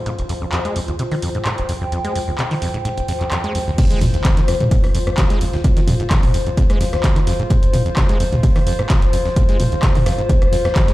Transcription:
Already playing: ambient pad F4 C5 F5
0.06 acid bass G#2, closed hi-hat
0.19 acid bass F1, closed hi-hat
0.29 acid bass F2, closed hi-hat, open hi-hat
0.42 acid bass F2
0.52 acid bass F2, clap, closed hi-hat
0.59 ambient pad G5
0.65 acid bass G#3, snare, closed hi-hat
0.76 acid bass F2, closed hi-hat, open hi-hat
0.88 acid bass D#2, closed hi-hat
0.99 acid bass C3, closed hi-hat, open hi-hat
1.11 acid bass D#3, open hi-hat
1.22 acid bass F2, closed hi-hat, open hi-hat
1.35 acid bass G#2, closed hi-hat
1.45 acid bass G#2, clap, closed hi-hat
1.58 acid bass F1, snare, closed hi-hat
1.69 acid bass F2, closed hi-hat, open hi-hat
1.81 acid bass F2, snare
1.92 acid bass F2, closed hi-hat
2.05 acid bass G#3, snare, closed hi-hat
2.15 acid bass F2, closed hi-hat, open hi-hat
2.28 acid bass D#2
2.38 acid bass C3, clap, closed hi-hat
2.51 acid bass D#3, open hi-hat
2.62 acid bass F2, snare, closed hi-hat, open hi-hat
2.74 acid bass G#2, closed hi-hat
2.85 acid bass G#2, closed hi-hat
2.98 acid bass F1, closed hi-hat
3.08 acid bass F2, snare, closed hi-hat, open hi-hat
3.20 acid bass F2, snare, clap, closed hi-hat
3.31 acid bass F2, clap, closed hi-hat
3.44 acid bass G#3, snare, closed hi-hat
3.55 acid bass F2, snare, closed hi-hat, open hi-hat
3.67 acid bass D#2
3.78 acid bass F2, kick, closed hi-hat, crash, impact
3.91 acid bass G#3, closed hi-hat
4.01 acid bass F2, closed hi-hat, mid tom, open hi-hat
4.11 acid bass D#2, ambient pad F5, closed hi-hat
4.24 acid bass C3, kick, snare, clap, closed hi-hat
4.37 acid bass D#3, snare, closed hi-hat
4.48 acid bass F2, cross-stick, closed hi-hat, open hi-hat
4.60 acid bass G#2, closed hi-hat, mid tom
4.71 acid bass G#2, kick, closed hi-hat, open hi-hat
4.84 acid bass F1, cross-stick, open hi-hat
4.95 acid bass F2, closed hi-hat, open hi-hat
5.07 acid bass F2, cross-stick, closed hi-hat
5.17 acid bass F2, kick, snare, clap, closed hi-hat
5.30 acid bass G#3, snare, closed hi-hat
5.41 acid bass F2, closed hi-hat, open hi-hat
5.53 acid bass D#2, snare
5.64 acid bass C3, kick, closed hi-hat
5.77 acid bass D#3, snare, closed hi-hat
5.88 acid bass F2, closed hi-hat, mid tom, open hi-hat
6.00 acid bass G#2, closed hi-hat
6.10 acid bass G#2, kick, snare, clap, closed hi-hat
6.23 acid bass F1, mid tom, open hi-hat
6.34 acid bass F2, closed hi-hat, open hi-hat
6.46 acid bass F2, closed hi-hat
6.57 acid bass F2, kick, closed hi-hat
6.70 acid bass G#3, cross-stick, closed hi-hat
6.81 acid bass F2, snare, closed hi-hat, open hi-hat
6.93 acid bass D#2, cross-stick, snare, closed hi-hat
7.03 acid bass C3, kick, snare, clap, closed hi-hat
7.16 acid bass D#3, snare, closed hi-hat
7.27 acid bass F2, snare, closed hi-hat, open hi-hat
7.39 acid bass G#2, closed hi-hat
7.50 acid bass G#2, kick, closed hi-hat
7.63 acid bass F1, closed hi-hat
7.73 acid bass F2, closed hi-hat, mid tom, open hi-hat
7.86 acid bass F2, closed hi-hat
7.96 acid bass F2, kick, snare, clap, closed hi-hat
8.09 acid bass G#3, snare, closed hi-hat
8.20 acid bass F2, closed hi-hat, open hi-hat
8.32 acid bass D#2, closed hi-hat, mid tom
8.43 acid bass C3, kick, closed hi-hat, open hi-hat
8.56 acid bass D#3, cross-stick, open hi-hat
8.67 acid bass F2, closed hi-hat, open hi-hat
8.79 acid bass G#2, cross-stick, closed hi-hat
8.90 acid bass G#2, kick, snare, clap, closed hi-hat
9.02 acid bass F1, snare, closed hi-hat
9.13 acid bass F2, closed hi-hat, open hi-hat
9.25 acid bass F2, snare
9.36 acid bass F2, kick, closed hi-hat
9.49 acid bass G#3, snare, closed hi-hat
9.60 acid bass F2, closed hi-hat, mid tom, open hi-hat
9.72 acid bass D#2, closed hi-hat
9.83 acid bass C3, kick, snare, clap, closed hi-hat
9.95 acid bass D#3, mid tom, open hi-hat
10.06 acid bass F2, cross-stick, snare, closed hi-hat, open hi-hat
10.18 acid bass G#2, closed hi-hat
10.29 acid bass G#2, kick, closed hi-hat
10.42 acid bass F1, cross-stick, closed hi-hat
10.53 acid bass F2, snare, closed hi-hat, open hi-hat
10.65 acid bass F2, cross-stick, snare, closed hi-hat
10.76 acid bass F2, kick, snare, clap, closed hi-hat
10.88 acid bass G#3, snare, closed hi-hat

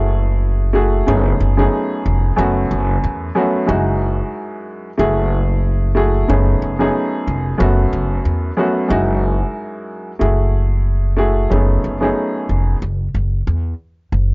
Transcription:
Already playing: upright bass F#1, upright piano A3 E4 F#4 G#4
0.73 upright piano A3 E4 F#4 G#4
1.06 upright bass F#1, upright piano F#2 A3 B3 C#4 D#4 G#4
1.40 upright bass F#1
1.57 upright piano F#2 A3 B3 C#4 D#4 G#4
2.06 upright bass F1
2.36 upright bass F#1, upright piano F#2 A3 B3 C#4 F#4
2.71 upright bass F#1
3.04 upright bass E2
3.35 upright piano F#2 A3 B3 C#4 F#4
3.66 upright bass F#1, upright piano F#2 G#3 D#4 E4 F#4
4.98 upright bass F#1, upright piano A3 E4 F#4 G#4
5.95 upright piano A3 E4 F#4 G#4
6.28 upright bass F#1, upright piano F#2 A3 B3 C#4 D#4 G#4
6.62 upright bass F#1
6.79 upright piano F#2 A3 B3 C#4 D#4 G#4
7.27 upright bass F1
7.58 upright bass F#1, upright piano F#2 A3 B3 C#4 F#4
7.93 upright bass F#1
8.25 upright bass E2
8.57 upright piano F#2 A3 B3 C#4 F#4
8.88 upright bass F#1, upright piano F#2 G#3 D#4 E4 F#4
10.19 upright bass F#1, upright piano A3 E4 F#4 G#4
11.17 upright piano A3 E4 F#4 G#4
11.50 upright bass F#1, upright piano F#2 A3 B3 C#4 D#4 G#4
11.84 upright bass F#1
12.01 upright piano F#2 A3 B3 C#4 D#4 G#4
12.49 upright bass F1
12.82 upright bass F#1
13.14 upright bass F#1
13.47 upright bass E2
14.12 upright bass F#1

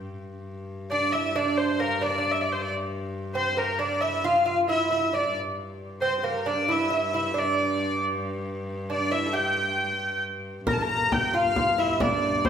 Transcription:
0.01 viola da gamba G2
0.91 lute D4, hurdy-gurdy D5
1.12 lute E4, hurdy-gurdy E5
1.36 lute D4, hurdy-gurdy D5
1.57 hurdy-gurdy C5
1.80 lute A#3, hurdy-gurdy A#4
2.01 lute D4, hurdy-gurdy D5
2.10 lute D4
2.18 lute D4
2.31 hurdy-gurdy E5
2.41 hurdy-gurdy D5
2.52 hurdy-gurdy C5
2.62 hurdy-gurdy D5
3.35 lute C4, hurdy-gurdy C5
3.57 lute A#3, hurdy-gurdy A#4
3.79 lute D4, hurdy-gurdy D5
4.01 lute E4, hurdy-gurdy E5
4.24 lute F4, hurdy-gurdy F5
4.46 lute F4, hurdy-gurdy F5
4.69 lute E4, hurdy-gurdy E5
4.91 lute E4, hurdy-gurdy E5
5.13 lute D4, hurdy-gurdy D5
5.33 viola da gamba G2
6.01 lute C4, hurdy-gurdy C5
6.18 hurdy-gurdy C5
6.23 lute A#3, hurdy-gurdy A#4
6.46 lute D4, hurdy-gurdy D5
6.69 lute E4, hurdy-gurdy E5
6.90 lute E4, hurdy-gurdy E5
7.14 lute E4
7.34 lute D4
7.38 hurdy-gurdy D5
8.90 lute D4, hurdy-gurdy D5
9.11 lute E4, hurdy-gurdy E5
9.26 lute A4
9.33 lute G4, hurdy-gurdy G5
10.67 viola da gamba G2, lute A#4, hurdy-gurdy A#5, frame drum
10.73 hurdy-gurdy A5
10.81 lute A#4, hurdy-gurdy A#5
10.90 frame drum
11.12 hurdy-gurdy G5, frame drum
11.34 lute F4, hurdy-gurdy F5, frame drum
11.56 lute F4, frame drum
11.78 lute E4, hurdy-gurdy E5, frame drum
12.00 lute D4, hurdy-gurdy D5, frame drum
12.23 frame drum
12.45 hurdy-gurdy C5, frame drum

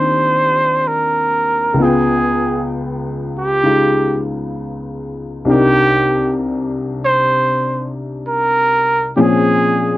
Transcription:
Already playing: upright piano D#2 D#3 C4 D4 F4 G4, trumpet C5
0.87 trumpet A#4
1.74 upright piano C#2 C#3
1.80 upright piano B3 F4, trumpet G#4
1.85 upright piano G5
3.38 trumpet G4
3.63 upright piano C#3 G#3 D#4 F4
5.45 upright piano C2 C3 D4 D#4
5.50 trumpet G4, upright piano A#4
7.04 trumpet C5
8.28 trumpet A#4
9.16 upright piano A#2 F3 C4 C#4 G#4, trumpet G4
9.21 trumpet G#4

